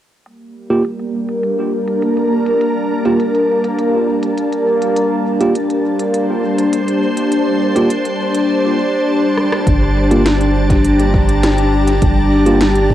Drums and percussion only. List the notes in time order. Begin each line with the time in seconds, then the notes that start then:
0.26 closed hi-hat
0.70 closed hi-hat
0.85 closed hi-hat
0.99 closed hi-hat
1.29 closed hi-hat
1.43 closed hi-hat
1.88 closed hi-hat
2.02 closed hi-hat
2.17 closed hi-hat
2.46 closed hi-hat
2.61 closed hi-hat
3.05 closed hi-hat
3.20 closed hi-hat
3.35 closed hi-hat
3.64 closed hi-hat
3.79 closed hi-hat
4.23 closed hi-hat
4.38 closed hi-hat
4.52 closed hi-hat
4.82 closed hi-hat
4.96 closed hi-hat
5.41 closed hi-hat
5.55 closed hi-hat
5.70 closed hi-hat
6.00 closed hi-hat
6.14 closed hi-hat
6.58 closed hi-hat
6.73 closed hi-hat
6.88 closed hi-hat
7.17 closed hi-hat
7.32 closed hi-hat
7.76 closed hi-hat
7.90 closed hi-hat
8.05 closed hi-hat
8.35 closed hi-hat
9.37 cross-stick
9.52 cross-stick
9.67 kick, closed hi-hat
10.11 closed hi-hat
10.26 snare, closed hi-hat
10.41 closed hi-hat
10.70 kick, closed hi-hat
10.84 closed hi-hat
10.99 closed hi-hat
11.14 kick
11.29 closed hi-hat
11.43 snare, closed hi-hat
11.58 closed hi-hat
11.87 closed hi-hat
12.02 kick, closed hi-hat
12.46 closed hi-hat
12.61 snare, closed hi-hat
12.76 closed hi-hat
12.90 kick